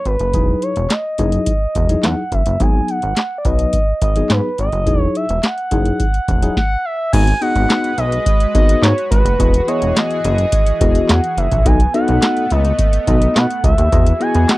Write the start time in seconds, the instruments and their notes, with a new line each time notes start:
0.05 analog synth bass G#1, analog synth lead B4, closed hi-hat
0.19 analog synth bass F#1, closed hi-hat
0.33 analog synth bass E1, tine electric piano F#3 D#4 E4 G#4, kick, closed hi-hat
0.62 analog synth lead C#5, closed hi-hat
0.76 analog synth bass E1, closed hi-hat
0.90 analog synth lead D#5, snare, clap, closed hi-hat
1.18 analog synth bass F#1, tine electric piano F#3 D#4 E4 G#4, kick, closed hi-hat
1.32 closed hi-hat
1.46 kick, closed hi-hat
1.75 analog synth bass E1, kick, closed hi-hat
1.89 tine electric piano F#3 D#4 E4 G#4, closed hi-hat
2.03 analog synth bass E2, analog synth lead F#5, snare, clap, closed hi-hat
2.32 analog synth bass F#1, analog synth lead E5, kick, closed hi-hat
2.46 analog synth bass F#1, closed hi-hat
2.60 analog synth bass G#1, tine electric piano F#3 B3 D#4 G#4, analog synth lead G#5, kick, closed hi-hat
2.88 analog synth lead F#5, closed hi-hat
3.02 analog synth bass G#1, closed hi-hat
3.17 snare, clap, closed hi-hat
3.38 analog synth lead D5
3.45 analog synth bass B1, tine electric piano F#3 B3 D#4 B4, analog synth lead D#5, kick, closed hi-hat
3.59 closed hi-hat
3.73 kick, closed hi-hat
4.02 analog synth bass G#1, analog synth lead D#5, kick, closed hi-hat
4.16 tine electric piano F#3 B3 D#4 G#4, closed hi-hat
4.30 analog synth bass G#2, analog synth lead B4, snare, clap, closed hi-hat
4.58 analog synth bass G#1, analog synth lead D#5, closed hi-hat
4.72 analog synth bass F#1, closed hi-hat
4.86 analog synth bass E1, tine electric piano F#3 D#4 E4 G#4, kick, closed hi-hat
5.01 analog synth lead C#5
5.15 analog synth lead E5, closed hi-hat
5.29 analog synth bass E1, closed hi-hat
5.43 analog synth lead F#5, snare, clap, closed hi-hat
5.58 closed hi-hat
5.71 analog synth bass F#1, tine electric piano F#3 D#4 E4 G#4, kick, closed hi-hat
5.85 closed hi-hat
6.00 kick, closed hi-hat
6.14 closed hi-hat
6.28 analog synth bass E1, kick, closed hi-hat
6.42 tine electric piano F#3 D#4 E4 G#4, closed hi-hat
6.57 analog synth lead F#5, kick, snare
6.85 analog synth lead E5
7.13 analog synth bass G#1, analog synth pad G#3 F#4 B4, tine electric piano B3 D#4 F#4 G#4 D#5, analog synth lead G#5, kick, closed hi-hat, crash
7.27 closed hi-hat
7.41 tine electric piano B3 D#4 F#4 G#4 D#5, analog synth lead F#5, closed hi-hat
7.56 analog synth bass G#1, closed hi-hat
7.70 snare, clap, closed hi-hat
7.84 closed hi-hat
7.98 analog synth bass B1, analog synth lead D#5, closed hi-hat
8.12 closed hi-hat
8.26 kick, closed hi-hat
8.40 closed hi-hat
8.54 analog synth bass G#1, tine electric piano B3 D#4 F#4 G#4 D#5, analog synth lead D#5, kick, closed hi-hat
8.69 closed hi-hat
8.82 analog synth bass G#2, analog synth lead C#5, snare, clap, closed hi-hat
8.98 closed hi-hat
9.11 analog synth bass G#1, analog synth lead B4, kick, closed hi-hat
9.25 analog synth bass F#1, closed hi-hat
9.39 analog synth bass E1, analog synth pad E3 G#4, tine electric piano B3 E4 F#4 G#4 D#5, kick, closed hi-hat
9.54 closed hi-hat
9.68 tine electric piano B3 E4 F#4 G#4 D#5, analog synth lead C#5, closed hi-hat
9.82 analog synth bass E1, closed hi-hat
9.96 analog synth lead D#5, snare, clap, closed hi-hat
10.11 closed hi-hat
10.24 analog synth bass F#1, closed hi-hat
10.38 closed hi-hat
10.52 kick, closed hi-hat
10.66 closed hi-hat
10.81 analog synth bass E1, tine electric piano B3 E4 F#4 G#4 D#5, kick, closed hi-hat
10.95 closed hi-hat
11.09 analog synth bass E2, analog synth lead F#5, snare, clap, closed hi-hat
11.24 closed hi-hat
11.37 analog synth bass F#1, analog synth lead E5, closed hi-hat
11.51 analog synth bass A#1, kick, closed hi-hat
11.65 analog synth bass B1, analog synth pad A3 B3, tine electric piano B3 D#4 F#4 A4 D#5, analog synth lead G#5, kick, closed hi-hat
11.80 closed hi-hat
11.94 tine electric piano B3 D#4 F#4 A4 D#5, analog synth lead F#5, closed hi-hat
12.08 analog synth bass B1, closed hi-hat
12.22 snare, clap, closed hi-hat
12.37 closed hi-hat
12.50 analog synth bass C#2, analog synth lead D#5, closed hi-hat
12.65 closed hi-hat
12.79 kick, closed hi-hat
12.93 closed hi-hat
13.07 analog synth bass B1, tine electric piano B3 D#4 F#4 A4 D#5, analog synth lead D#5, kick, closed hi-hat
13.22 closed hi-hat
13.36 analog synth bass B2, analog synth lead F#5, snare, clap, closed hi-hat
13.51 closed hi-hat
13.64 analog synth bass C#2, analog synth lead E5, kick, closed hi-hat
13.78 analog synth bass D#2, closed hi-hat
13.92 analog synth bass E2, analog synth pad E3 F#4 G#4, tine electric piano B3 E4 F#4 G#4 D#5, kick, closed hi-hat
14.06 closed hi-hat
14.20 tine electric piano B3 E4 F#4 G#4 D#5, analog synth lead G#5, closed hi-hat
14.35 analog synth bass E2, closed hi-hat
14.49 analog synth lead F#5, snare, clap, closed hi-hat